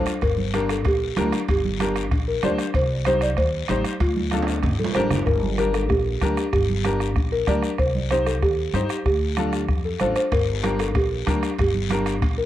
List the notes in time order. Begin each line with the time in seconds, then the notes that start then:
Already playing: D4 F4 A4 C5
0.06 bombo rim, high timbale, short guiro
0.21 G1 A#4, bombo low, bombo rim, high timbale, long guiro
0.38 high conga
0.54 D4 G4 A#4, bombo rim, high conga, high timbale, short guiro
0.69 A4, bombo rim, high timbale, short guiro
0.85 A#1 G4, bombo low, bombo rim, high timbale, long guiro
1.17 D2 D4 G4 A#4, bombo rim, high conga, high timbale, low timbale, short guiro
1.32 bombo rim, high timbale, short guiro
1.48 G1 G4, bombo low, bombo rim, high timbale, long guiro
1.65 high conga
1.80 D4 G4 A#4, bombo rim, high conga, high timbale, short guiro
1.96 bombo rim, high timbale, short guiro
2.11 A#1, bombo low, bombo rim, high timbale, long guiro
2.28 A#4
2.43 D2 D4 G4 C5 D5, bombo rim, high conga, high timbale, low timbale, short guiro
2.58 bombo rim, high timbale, short guiro
2.74 C2 C5, bombo low, bombo rim, high timbale, long guiro
3.05 D#4 G4 C5, bombo rim, high conga, high timbale, short guiro
3.21 D5, bombo rim, high timbale, short guiro
3.37 D#2 C5, bombo low, bombo rim, high timbale, long guiro
3.68 A1 D#4 G4 C5, bombo rim, high conga, high timbale, short guiro
3.84 bombo rim, high timbale, short guiro
4.00 D2 F4, bombo low, bombo rim, high timbale, long guiro
4.16 high conga
4.31 D4 F4 A4, bombo rim, high conga, high timbale, short guiro
4.42 high timbale
4.47 bombo rim, short guiro
4.53 high timbale
4.63 G1, bombo low, bombo rim, high timbale, long guiro
4.79 A#1 A4, high conga
4.84 low timbale
4.95 A1 D4 G4 A#4 C5, bombo rim, high conga, low timbale, short guiro
5.11 G1, bombo rim, low conga, short guiro
5.16 low timbale
5.26 G1 A#4, bombo low, bombo rim, long guiro
5.42 high conga
5.58 D4 G4 A#4, bombo rim, high conga, short guiro
5.74 A4, bombo rim, short guiro
5.89 A#1 G4, bombo low, bombo rim, long guiro
6.21 D2 D4 G4 A#4, bombo low, bombo rim, high conga, short guiro
6.37 bombo rim, short guiro
6.53 G1 G4, bombo low, bombo rim, long guiro
6.69 high conga
6.85 D4 G4 A#4, bombo rim, high conga, short guiro
7.00 bombo rim, short guiro
7.16 A#1, bombo low, bombo rim, long guiro
7.32 A#4
7.47 D2 D4 G4 A#4 D5, bombo low, bombo rim, high conga, short guiro
7.63 bombo rim, short guiro
7.78 C2 C5, bombo low, bombo rim, long guiro
7.95 high conga
8.11 D#4 G4 C5, bombo rim, high conga, short guiro
8.26 A4, bombo rim, short guiro
8.42 D#2 G4, bombo low, bombo rim, long guiro
8.73 G2 D#4 G4 C5, bombo rim, high conga, short guiro
8.89 bombo rim, short guiro
9.06 D2 G4, bombo low, bombo rim, long guiro
9.37 D4 F4 A4, bombo rim, high conga, short guiro
9.53 bombo rim, short guiro
9.68 F2, bombo low, bombo rim, long guiro
9.85 A4
10.00 A1 D4 F4 A4 C5, bombo rim, high conga, short guiro
10.16 C5, bombo rim, short guiro
10.32 G1 A#4, bombo low, bombo rim, high timbale, long guiro
10.63 D4 G4 A#4, bombo rim, high conga, high timbale, short guiro
10.79 A4, bombo rim, high timbale, short guiro
10.95 A#1 G4, bombo low, bombo rim, high timbale, long guiro
11.26 D2 D4 G4 A#4, bombo low, bombo rim, high conga, high timbale, short guiro
11.43 bombo rim, high timbale, short guiro
11.59 G1 G4, bombo low, bombo rim, high timbale, long guiro
11.74 high conga
11.90 D4 G4 A#4, bombo rim, high conga, high timbale, short guiro
12.06 bombo rim, high timbale, short guiro
12.22 A#1, bombo low, bombo rim, high timbale, long guiro
12.38 A#4